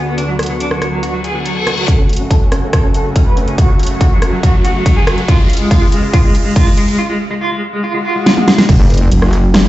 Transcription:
Already playing: D2 D3 B3 F#4
0.07 B3
0.18 D4, closed hi-hat
0.28 F#3
0.39 cross-stick, closed hi-hat
0.43 closed hi-hat
0.46 F#3, closed hi-hat
0.60 D4, closed hi-hat
0.71 F#3, cross-stick
0.82 F#3, cross-stick, closed hi-hat
0.92 F#3
1.03 F#4, closed hi-hat, reverse cymbal
1.14 F#3
1.24 G#4, closed hi-hat
1.35 F#3
1.46 F#3, closed hi-hat
1.56 A4
1.67 F#3, cross-stick, closed hi-hat
1.77 F#3, closed hi-hat
1.88 F#2 C#3 A3 F#4 A4, kick, closed hi-hat, riser
1.99 C#4
2.09 closed hi-hat
2.13 closed hi-hat
2.16 C#4, closed hi-hat
2.31 A4, kick, closed hi-hat
2.41 C#4
2.52 C#4, cross-stick, closed hi-hat
2.63 C#4
2.73 A4, kick, cross-stick, closed hi-hat
2.84 C#4
2.94 A4, closed hi-hat
3.05 C#4
3.16 C#4, kick, closed hi-hat
3.26 B4
3.37 C#4, closed hi-hat
3.48 C#4, closed hi-hat
3.58 F#4, kick, closed hi-hat
3.69 F#3
3.79 closed hi-hat
3.83 closed hi-hat
3.87 F#3, closed hi-hat
4.01 F#4, kick, closed hi-hat
4.11 F#3
4.22 F#3, cross-stick, closed hi-hat
4.33 F#3
4.43 F#4, kick, closed hi-hat
4.54 F#3
4.65 F#4, closed hi-hat
4.75 F#3
4.86 F#3, kick, closed hi-hat
4.97 G#4
5.07 F#3, cross-stick, closed hi-hat
5.18 F#3, closed hi-hat
5.28 C#2 G#3 F4, kick, closed hi-hat
5.39 G#3
5.50 closed hi-hat
5.53 closed hi-hat
5.57 G#3, closed hi-hat
5.71 F4, kick, closed hi-hat
5.82 G#3
5.92 G#3, closed hi-hat
6.03 G#3
6.13 F4, kick, closed hi-hat
6.24 G#3
6.35 closed hi-hat
6.45 G#3
6.56 F4, kick, closed hi-hat
6.67 G#3
6.77 G#3, closed hi-hat
6.88 G#3, closed hi-hat
6.99 F4
7.09 G#3
7.31 G#3
7.41 F4
7.52 G#3
7.73 G#3
7.84 F4, swell
7.94 G#3
8.05 F4
8.16 G#3
8.26 F4, snare
8.37 G#3, high tom
8.48 F4, snare
8.58 G#3, snare
8.69 F#1 F#3 C#4 C#5 F#5, kick, closed hi-hat, crash, sub drop
8.80 F#1
8.90 closed hi-hat
8.94 closed hi-hat
8.97 closed hi-hat
9.11 F#1, closed hi-hat, crash
9.22 cross-stick
9.33 closed hi-hat
9.54 cross-stick, snare, closed hi-hat, crash

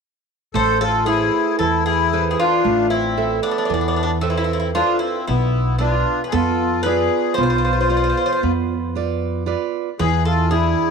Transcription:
0.54 A1 A3 A4 C5
0.81 F4 A4
1.06 E4 G#4 B4 C5
1.59 E2 E3 E4 A4
1.86 E4 G#4
2.13 A4 B4 C5
2.31 E4 G#4
2.39 D4 F4
2.64 A1 A3
2.90 C4 E4
3.17 A4 B4 E5
3.43 B3 D4
3.51 D4
3.58 D4
3.65 D4
3.70 E2 E3
3.74 D4
3.81 D4
3.88 D4
3.96 D4
4.03 D4
4.21 C4 E4 A4 B4 C5
4.30 E4
4.38 E4
4.44 E4
4.53 E4
4.60 E4
4.74 D4 F4 A4 B4 C5
4.99 C4 E4
5.27 B1 B3 E4
5.78 D4 F4 B4 D5
6.24 G#4 B4
6.32 F2 B3 F4 A4
6.83 F4 G#4 B4 D5
7.34 B3 C5
7.38 B1 F4
7.43 C5
7.50 C5
7.58 C5
7.65 C5
7.73 C5
7.81 C5
7.90 F4 B4 C5 D5
7.97 C5
8.04 C5
8.10 C5
8.17 C5
8.26 C5
8.33 C5
8.43 F2 B3
8.95 F4 B4 D5
9.46 F4 B4 D5
9.99 E2 E3 G#4 B4
10.25 F4 A4
10.51 D4 E4 G#4

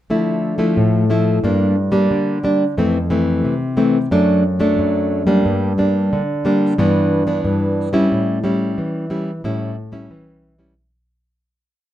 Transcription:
0.10 D3 F3 A3 E4
0.58 F3 A3 E4
0.77 A2
1.10 F3 A3 E4
1.44 G2 G3 A#3 D4
1.92 G3 A#3 D4
2.11 D3
2.44 G3 A#3 D4
2.77 F2 E3 A3 C4
3.10 E3 A3 C4
3.44 C3
3.77 E3 A3 C4
4.11 F#2 F#3 A3 D4
4.60 F#3 A3 D4
4.78 F#2
5.27 G3 A#3 D4
5.45 G2
5.78 G3 A#3 D4
6.13 D3
6.45 G3 A#3 D4
6.78 G2 E3 B3 D4
7.27 E3 B3 D4
7.45 G2
7.93 G3 C#4 E4
8.12 A2
8.44 G3 C#4 E4
8.78 E3
9.10 G3 C#4 E4
9.44 A2 G3 C#4 E4
9.92 G3 C#4 E4
10.11 E3
10.59 G3 C#4 E4

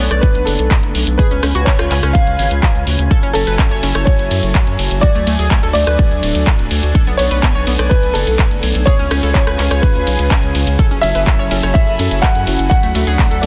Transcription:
Already playing: A3 B3 D4 C#5 G#5 G#6
0.11 B1 D5, cross-stick, closed hi-hat
0.21 B4, kick, closed hi-hat
0.35 B1, closed hi-hat
0.45 F#1 A4, open hi-hat
0.59 B1, closed hi-hat
0.71 kick, clap, closed hi-hat
0.83 F#1, closed hi-hat
0.95 B1, open hi-hat
1.07 B1, closed hi-hat
1.17 C#3 C#4 F4 G#4 B4 G#5, kick, closed hi-hat
1.31 C#2 C#4, closed hi-hat
1.43 C#2 C#4, cross-stick, open hi-hat
1.55 C#2 F#4, closed hi-hat
1.65 C#4 C#5, kick, clap, closed hi-hat
1.79 C#2 F4, cross-stick, closed hi-hat
1.91 C#2 C#4, clap, open hi-hat
2.03 C#2 C#4, cross-stick, closed hi-hat
2.13 F5, kick, closed hi-hat
2.27 C#2, closed hi-hat
2.39 G#1, open hi-hat
2.51 C#2, closed hi-hat
2.63 kick, clap, closed hi-hat
2.75 C#2, closed hi-hat
2.87 D2, open hi-hat
2.99 D2, closed hi-hat
3.11 F#3 E4 A4, kick, closed hi-hat
3.23 F#1 C#4, closed hi-hat
3.33 F#1 C#4 A4, open hi-hat, ride
3.47 F#1 B4, closed hi-hat
3.59 C#4, kick, clap, closed hi-hat
3.71 F#1 C#5, closed hi-hat
3.83 F#1 C#4, open hi-hat, ride
3.95 F#1 C#5, cross-stick, closed hi-hat
4.05 C#5, kick, closed hi-hat
4.19 F#1, closed hi-hat
4.31 F#2, open hi-hat, ride
4.43 F#1, closed hi-hat
4.55 kick, clap, closed hi-hat
4.67 F#2, closed hi-hat
4.79 F#1, open hi-hat, ride
4.91 F#1, closed hi-hat
5.01 A3 D4 F#4 D5, kick, closed hi-hat
5.15 D2 A3, closed hi-hat
5.27 D2 A3, open hi-hat, ride
5.39 D2 G#4, closed hi-hat
5.51 A3, kick, clap, closed hi-hat
5.63 D2 A4, closed hi-hat
5.73 D2 A3 D5, open hi-hat, ride
5.87 D2 B4, cross-stick, closed hi-hat
5.99 kick, closed hi-hat
6.11 D2, closed hi-hat
6.23 D1, open hi-hat, ride
6.35 D2, closed hi-hat
6.47 kick, clap, closed hi-hat
6.59 D1, closed hi-hat
6.71 D2, open hi-hat, ride
6.83 D2, closed hi-hat
6.95 B3 A4, kick, closed hi-hat
7.07 B1 B3, closed hi-hat
7.17 B1 B3 C#5, open hi-hat, ride
7.31 B1 B4, closed hi-hat
7.43 B3, kick, clap, closed hi-hat
7.55 B1 C#5, closed hi-hat
7.67 B1 B3, open hi-hat, ride
7.79 B1 D5, cross-stick, closed hi-hat
7.89 B4, kick, closed hi-hat
8.03 B1, closed hi-hat
8.14 F#1 A4, open hi-hat, ride
8.27 B1, closed hi-hat
8.39 kick, clap, closed hi-hat
8.51 F#1, closed hi-hat
8.63 B1, open hi-hat, ride
8.75 B1, closed hi-hat
8.86 C#3 C#4 F4 G#4 B4 C#5, kick, closed hi-hat
8.99 C#2 C#4, closed hi-hat
9.11 C#2 C#4, cross-stick, open hi-hat, ride
9.23 C#2 A4, closed hi-hat
9.34 C#4 C#5, kick, clap, closed hi-hat
9.47 C#2 B4, cross-stick, closed hi-hat
9.59 C#2 C#4, clap, open hi-hat, ride
9.71 C#2 C#5, cross-stick, closed hi-hat
9.82 B4, kick, closed hi-hat
9.95 D2, closed hi-hat
10.07 B1, open hi-hat, ride
10.19 C#2, closed hi-hat
10.31 kick, clap, closed hi-hat
10.43 C#2, closed hi-hat
10.55 C#2, open hi-hat, ride
10.67 C#2, closed hi-hat
10.79 F#3 E4 A4 B5 B6, kick, closed hi-hat, shaker
10.91 F#1 C#4, closed hi-hat
11.01 F#1 F#3 C#4 E4 A4 E5, open hi-hat, ride, shaker
11.15 F#1 B4, closed hi-hat, shaker
11.26 C#4, kick, clap, closed hi-hat, shaker
11.39 F#1 C#5, closed hi-hat
11.51 F#1 F#3 C#4 E4 A4, open hi-hat, ride, shaker
11.63 F#1 C#5, cross-stick, closed hi-hat, shaker
11.74 E5, kick, closed hi-hat, shaker
11.87 F#1, closed hi-hat
11.99 F#2 F#3 C#4 E4 A4, open hi-hat, ride, shaker
12.11 F#1, closed hi-hat, shaker
12.22 F#5, kick, clap, closed hi-hat, shaker
12.35 F#2, closed hi-hat
12.47 F#1 F#3 C#4 E4 A4, open hi-hat, ride, shaker
12.59 F#1, closed hi-hat, shaker
12.70 A3 D4 F#4 F#5, kick, closed hi-hat, shaker
12.83 D2 A3, closed hi-hat
12.95 D2 F#3 A3 D4 A4, open hi-hat, ride, shaker
13.07 D2 G#4, closed hi-hat, shaker
13.19 A3, kick, clap, closed hi-hat, shaker
13.31 D2 A4, closed hi-hat
13.41 D2 F#3 A3 D4 A4 D5, open hi-hat, ride, shaker

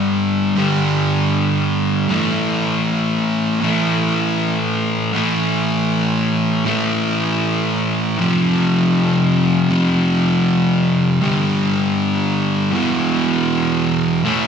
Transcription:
Already playing: G2 D3 G3
0.56 G2 D3 G3
2.08 A2 E3 A3
3.61 A2 E3 A3
5.13 A2 E3 A3
6.65 A2 E3 A3
8.18 F2 C3 F3
9.70 F2 C3 F3
11.21 G2 D3 G3
12.72 E2 B2 E3
14.24 A2 E3 A3

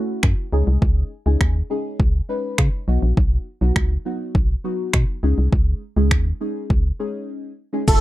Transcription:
Already playing: A3 C#4 E4 F#4
0.23 F#2, finger snap, kick
0.52 C#2 G#3 C#4 D#4 G#4
0.67 C2
0.82 C#2, kick
1.26 C#2 G#3 C#4 D#4 G#4
1.41 D#2, finger snap, kick
1.70 G#3 C#4 D#4 G#4
2.00 C#2, kick
2.29 G#3 C#4 D#4 B4
2.58 C#3, finger snap, kick
2.88 B1 F#3 B3 D#4 F#4
3.03 A#1
3.17 B1, kick
3.61 B1 F#3 B3 D#4 F#4
3.76 C#2, finger snap, kick
4.05 F#3 B3 D#4 F#4
4.35 B1, kick
4.64 F#3 B3 D#4 F#4
4.93 B2, finger snap, kick
5.23 C#2 G#3 C#4 D#4 G#4
5.38 C2
5.52 C#2, kick
5.96 C#2 G#3 C#4 D#4 G#4
6.11 D#2, finger snap, kick
6.40 G#3 C#4 D#4 G#4
6.70 C#2, kick
6.99 G#3 C#4 D#4 G#4
7.73 G#3 C#4 D#4 G#4
7.87 F#1 A3 C#4 E4 F#4 A4, kick, crash, tambourine, shaker

